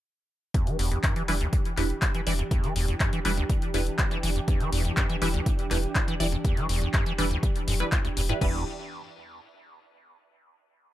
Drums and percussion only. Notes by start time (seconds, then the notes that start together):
0.54 kick, closed hi-hat
0.67 closed hi-hat
0.79 open hi-hat
0.92 closed hi-hat
1.03 kick, clap, closed hi-hat
1.16 closed hi-hat
1.28 open hi-hat
1.41 closed hi-hat
1.53 kick, closed hi-hat
1.65 closed hi-hat
1.77 clap, open hi-hat
1.90 closed hi-hat
2.02 kick, clap, closed hi-hat
2.15 closed hi-hat
2.27 open hi-hat
2.39 closed hi-hat
2.51 kick, closed hi-hat
2.64 closed hi-hat
2.76 open hi-hat
2.88 closed hi-hat
3.00 kick, clap, closed hi-hat
3.13 closed hi-hat
3.25 open hi-hat
3.37 closed hi-hat
3.49 kick, closed hi-hat
3.62 closed hi-hat
3.74 open hi-hat
3.87 closed hi-hat
3.99 kick, clap, closed hi-hat
4.11 closed hi-hat
4.23 open hi-hat
4.36 closed hi-hat
4.48 kick, closed hi-hat
4.60 closed hi-hat
4.73 open hi-hat
4.85 closed hi-hat
4.97 kick, clap, closed hi-hat
5.10 closed hi-hat
5.22 open hi-hat
5.34 closed hi-hat
5.46 kick, closed hi-hat
5.59 closed hi-hat
5.71 clap, open hi-hat
5.83 closed hi-hat
5.95 kick, clap, closed hi-hat
6.08 closed hi-hat
6.20 open hi-hat
6.33 closed hi-hat
6.45 kick, closed hi-hat
6.57 closed hi-hat
6.69 open hi-hat
6.94 kick, clap, closed hi-hat
7.06 closed hi-hat
7.19 open hi-hat
7.31 closed hi-hat
7.43 kick, closed hi-hat
7.56 closed hi-hat
7.68 open hi-hat
7.80 closed hi-hat
7.92 kick, clap, closed hi-hat
8.05 closed hi-hat
8.17 open hi-hat
8.29 closed hi-hat
8.41 kick, crash